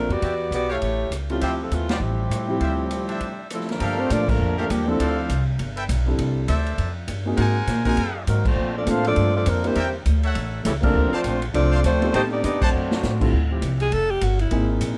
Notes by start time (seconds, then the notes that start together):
Already playing: F3 A3 D4 A#4
0.09 F2 B3 F#4 G4 D5, ride
0.22 E2 F#4 G4 D5 E5, kick, ride
0.51 B1 B3 F#4 G4 D5, hi-hat pedal, ride
0.69 A3 E4 G4 A4 C#5 F5
0.82 A1, kick, ride
1.10 C#2, cross-stick, hi-hat pedal, ride
1.29 G3 A3 C4 C#4 E4 F4 G4, ride
1.41 D2 F3 C4 E4 F4 G4 C5 E5, kick, ride
1.63 F3 C4 E4 A4
1.71 D#2 E3 A3 C4 F4, hi-hat pedal, ride
1.89 A2 C3 F3 G3 C4 E4 F4 G4 C5 D5, snare, ride
2.00 A1
2.29 A2, cross-stick, hi-hat pedal, ride
2.48 F3 C4 E4 G4
2.60 D2 F4 G4 C5 E5, kick, ride
2.91 hi-hat pedal, ride
3.08 D4 G4 C5 E5, ride
3.20 kick, ride
3.50 C3 F3 A3 C4 E4 A4, cross-stick, hi-hat pedal, ride
3.61 snare
3.69 D3 F3 A3 A#3 D4 A#4, snare, ride
3.80 G2 G4 A4 A#4 F5, kick, ride
3.99 A3 C4 D4 F4 C5
4.10 A2 F3 A#3 D4 F4 A4 D5, kick, hi-hat pedal, ride
4.28 D3 F3 A3 A#3 D4 A#4, kick, crash
4.39 F2
4.58 D3 F3 A3 A#3 D4 G4 A4 A#4 F5
4.70 D#2 A#2 D3 F3 G3 A#3 D4 G4, kick, hi-hat pedal, ride
4.87 C3 F3 A3 C4 D4 E4 A4
4.99 D2 A4 C5 D5 F5, kick, ride
5.29 C2, kick, hi-hat pedal, ride
5.59 G1, kick, ride
5.76 A4 B4 E5 G5, ride
5.89 B1, kick, hi-hat pedal, ride
6.06 G3 C4 D4 E4 A4
6.18 C2, kick, ride
6.48 D2 A4 C5 D5 E5, kick, hi-hat pedal, ride
6.66 ride
6.78 F2, kick, ride
7.08 G2, kick, hi-hat pedal, ride
7.25 A#3 C4 D#4 F#4 G#4
7.37 G#2 A#3 C4 D#4 F#4 G#4 A#4 C5 F#5 G#5, kick, ride
7.67 A#2, kick, snare, hi-hat pedal, ride
7.85 A#3 C4 D#4 F#4 G#4 A#4 C5 F#5 G#5, kick, ride
7.97 F#2, kick, ride
8.27 G#2 D#3 F#3 A#3 C4 D#4 A#4, kick, hi-hat pedal, ride
8.45 F3 A3 C4 D4 F4 C5, kick, crash
8.56 A#2
8.77 F3 A3 C4 D4 F4 A4 D5
8.86 A2 A3 A#3 C4 D4 F4 A4 C5 F5, kick, hi-hat pedal, ride
8.90 D4 A4
9.04 F3 A3 C4 D4 F4 A4 D5, ride
9.16 G2, kick, ride
9.36 F3 A3 C4 D4 F4 A4 D5
9.46 F2 D3 F3 A#3 C4 D4 A#4, kick, hi-hat pedal, ride
9.63 D3 G3 A#3 C4 D4 E4 A#4 C5, ride
9.67 G4
9.75 E2 A#4 D5 E5 G5, kick, ride
10.05 D2, kick, hi-hat pedal, ride
10.23 A4 C#5 E5 F#5, ride
10.35 A1, kick, ride
10.63 C#2 C#3 E3 G3 A3 C#4 E4 A4, kick, snare, hi-hat pedal, ride
10.81 C3 F3 A3 A#3 C4 D4 F4 A4 A#4, kick, crash
10.94 D2
11.11 F3 A3 C4 D4 F4 C5 D5 F5 A5, muted upright bass stroke
11.24 A#1, kick, hi-hat pedal, ride
11.42 ride
11.54 C2 F3 A3 C4 D4 F4 A4 D5, kick, ride
11.72 C5 D5 F5 C6
11.83 D2 F3 A3 C4 D4 F4 C5, kick, hi-hat pedal, ride
12.01 B3 C4 D#4 G4 A4, ride
12.12 A2 D#3 G3 A3 C4 D#4 G4 C5 D#5 G5 A5, kick, ride
12.31 B3 D4 D#4 G4 D5
12.43 F2 B3 D4 D#4 G4 D5, kick, hi-hat pedal, ride
12.61 F#3 A3 C4 F#4 C5 D5 F#5 A5, kick, crash
12.65 A3 D4
12.74 F#2
12.91 snare
13.03 A2, snare, hi-hat pedal
13.20 D3 G3 C4 E4 F4 A4, kick, crash
13.33 D2
13.50 F3 C4 E4 G4
13.62 C2, kick, hi-hat pedal, ride
13.80 G#4, ride
13.92 F1 A4, kick, ride
14.11 G4
14.21 G1 F#4, kick, hi-hat pedal, ride
14.39 E4, ride
14.51 G#1 A#3 C4 D#4 E4 G#4, kick, ride
14.81 A#1, kick, hi-hat pedal, ride